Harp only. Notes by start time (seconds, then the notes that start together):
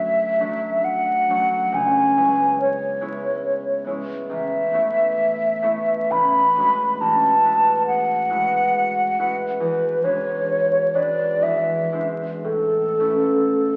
Already playing: D2 F#3 A3 C#4 D4 C#5
0.40 F#3 A3 D4 C#5
1.29 F#3 A3 D4 C#5
1.72 C#2
2.16 G#3 B3 E4 C#5
3.01 G#3 B3 E4 C#5
3.84 G#3 B3 E4
3.90 C#5
4.29 A1
4.73 A3 B3 E4 C#5
5.62 A3 B3 E4 C#5
6.10 A1
6.55 G#3 D4 F#4
6.60 C#5
7.01 A1
7.43 G#3 E4 F#4 B4
8.30 G#3 E4 F#4 B4
9.18 G#3 E4 F#4 B4
9.60 E2
10.04 G#3 D4 F#4 B4
10.94 G#3 D4 F#4 B4
11.42 E2
11.92 G#3 D4 E4 C5
12.44 A2
12.99 A3 C#4 E4 B4